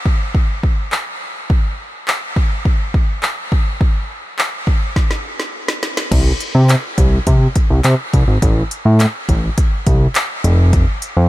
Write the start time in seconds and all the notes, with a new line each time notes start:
0.06 kick
0.35 kick
0.63 kick
0.92 clap
1.50 kick
2.08 clap
2.36 kick
2.65 kick
2.94 kick
3.23 clap
3.52 kick
3.81 kick
4.39 clap
4.67 kick
4.96 kick, snare
5.11 snare
5.40 snare
5.68 snare
5.83 snare
5.97 snare
6.11 C2, kick, closed hi-hat, crash
6.41 closed hi-hat
6.55 C3
6.69 clap, closed hi-hat
6.98 C2, kick, closed hi-hat
7.27 C3, kick, closed hi-hat
7.56 kick, closed hi-hat
7.70 C2
7.84 C3, clap, closed hi-hat
8.13 C2, kick, closed hi-hat
8.28 G#1
8.42 A1, kick, closed hi-hat
8.71 closed hi-hat
8.85 A2
9.00 clap, closed hi-hat
9.29 A1, kick, closed hi-hat
9.58 kick, closed hi-hat
9.87 C2, kick, closed hi-hat
10.15 clap, closed hi-hat
10.44 F1, closed hi-hat
10.73 kick, closed hi-hat
11.02 closed hi-hat
11.17 F2